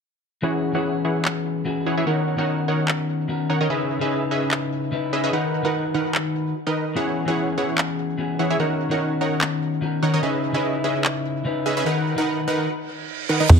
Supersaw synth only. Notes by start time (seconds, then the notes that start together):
0.43 E3 E4 G#4 C#5 F#5
0.75 E3 E4 G#4 C#5 F#5
1.05 E3 E4 G#4 C#5 F#5
1.86 E3 E4 G#4 C#5 F#5
1.97 E3 E4 G#4 C#5 E5
2.07 D#3 D#4 A#4 C#5 F#5
2.38 D#3 D#4 A#4 C#5 F#5
2.68 D#3 D#4 A#4 C#5 F#5
3.50 D#3 D#4 A#4 C#5 F#5
3.61 D#3 D#4 A#4 C#5 D#5
3.70 C#4 G#4 B4 D#5 E5
4.01 C#4 G#4 B4 D#5 E5
4.31 C#4 G#4 B4 D#5 E5
5.13 C#4 G#4 B4 D#5 E5
5.24 C#4 G#4 B4 D#5 E5
5.33 D#3 D#4 A#4 B4 F#5
5.65 D#3 D#4 A#4 B4 F#5
5.94 D#3 D#4 A#4 B4 F#5
6.67 D#3 D#4 A#4 B4 D#5
6.96 E3 E4 G#4 C#5 F#5
7.28 E3 E4 G#4 C#5 F#5
7.58 E3 E4 G#4 C#5 F#5
8.39 E3 E4 G#4 C#5 F#5
8.50 E3 E4 G#4 C#5 E5
8.60 D#3 D#4 A#4 C#5 F#5
8.91 D#3 D#4 A#4 C#5 F#5
9.21 D#3 D#4 A#4 C#5 F#5
10.03 D#3 D#4 A#4 C#5 F#5
10.14 D#3 D#4 A#4 C#5 D#5
10.23 C#4 G#4 B4 D#5 E5
10.54 C#4 G#4 B4 D#5 E5
10.84 C#4 G#4 B4 D#5 E5
11.66 C#4 G#4 B4 D#5 E5
11.77 C#4 G#4 B4 D#5 E5
11.86 D#3 D#4 A#4 B4 F#5
12.18 D#3 D#4 A#4 B4 F#5
12.48 D#3 D#4 A#4 B4 F#5
13.29 D#3 D#4 A#4 B4 F#5
13.40 D#3 D#4 A#4 B4 D#5
13.50 E3 E4 G#4